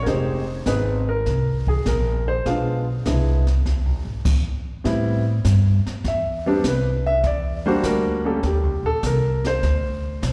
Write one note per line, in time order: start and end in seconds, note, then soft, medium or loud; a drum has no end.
0.03 0.65 F1 medium
0.03 0.44 G#3 medium
0.03 0.07 A#4 medium
0.03 brush sweep soft
0.03 kick soft
0.03 snare soft
0.07 0.44 C4 soft
0.07 0.44 D#4 medium
0.07 0.44 G4 medium
0.07 0.63 C5 medium
0.66 1.24 G#1 medium
0.66 1.04 G#3 soft
0.66 1.04 C4 medium
0.66 1.04 D#4 soft
0.66 1.04 G#4 medium
0.66 1.09 B4 medium
0.66 kick soft
0.66 snare soft
0.66 hi-hat pedal soft
1.09 1.70 A#4 medium
1.26 1.84 C2 medium
1.26 brush sweep soft
1.26 kick soft
1.26 snare soft
1.67 1.85 G#4 medium
1.67 kick soft
1.86 2.44 A#1 medium
1.86 2.25 A#4 medium
1.86 kick soft
1.86 snare soft
1.86 hi-hat pedal soft
2.28 2.45 C5 medium
2.46 3.04 B1 medium
2.46 2.83 G#3 soft
2.46 2.83 B3 soft
2.46 2.84 D4 soft
2.46 2.84 F4 medium
2.46 4.21 F5 medium
2.46 brush sweep soft
2.46 kick soft
2.46 snare soft
3.05 3.64 C2 medium
3.05 3.43 G#3 soft
3.05 3.43 B3 soft
3.05 3.43 D4 soft
3.05 3.43 E4 soft
3.05 kick soft
3.05 snare soft
3.05 hi-hat pedal soft
3.47 snare soft
3.65 3.85 D2 medium
3.65 brush sweep soft
3.65 kick soft
3.65 snare soft
3.85 4.04 B1 soft
4.05 4.24 G#1 medium
4.25 kick medium
4.25 snare soft
4.25 hi-hat pedal soft
4.25 crash medium
4.84 5.43 A2 medium
4.84 5.22 G3 medium
4.84 5.22 B3 medium
4.84 5.22 C4 medium
4.84 5.22 E4 medium
4.84 brush sweep soft
4.84 kick soft
4.84 snare soft
5.44 5.83 G2 medium
5.44 kick soft
5.44 snare medium
5.44 hi-hat pedal medium
5.86 muted upright bass stroke soft
5.86 snare soft
6.04 6.62 E2 medium
6.04 6.46 E5 medium
6.04 brush sweep soft
6.04 kick soft
6.04 snare soft
6.46 6.63 G3 medium
6.46 6.63 B3 medium
6.46 6.63 C4 medium
6.46 6.63 D4 medium
6.46 6.65 G4 medium
6.64 7.22 C2 medium
6.64 7.06 B4 medium
6.64 kick soft
6.64 snare medium
6.64 hi-hat pedal medium
7.06 7.24 E5 loud
7.23 7.82 E2 medium
7.23 7.65 D5 medium
7.23 brush sweep soft
7.23 kick soft
7.23 snare soft
7.66 8.21 G3 medium
7.66 8.21 A#3 medium
7.66 8.22 D4 medium
7.66 8.22 F#4 medium
7.66 7.84 C5 medium
7.83 8.42 D2 medium
7.83 8.25 A#4 medium
7.83 kick soft
7.83 snare medium
7.83 hi-hat pedal medium
8.25 8.41 G3 medium
8.25 8.42 A#3 medium
8.25 8.42 C#4 medium
8.25 8.42 G4 medium
8.25 8.44 A4 medium
8.43 8.63 D#2 medium
8.43 8.85 G4 medium
8.43 brush sweep soft
8.43 kick soft
8.43 snare soft
8.63 8.82 C#2 medium
8.83 9.02 A#1 medium
8.83 9.03 A4 medium
9.03 9.61 C2 medium
9.03 9.45 A#4 medium
9.03 kick soft
9.03 snare medium
9.03 hi-hat pedal medium
9.44 10.33 C5 loud
9.44 snare soft
9.63 10.21 D2 medium
9.63 brush sweep medium
9.63 kick soft
9.63 snare soft
10.22 10.33 B1 medium
10.22 kick soft
10.22 snare medium
10.22 hi-hat pedal medium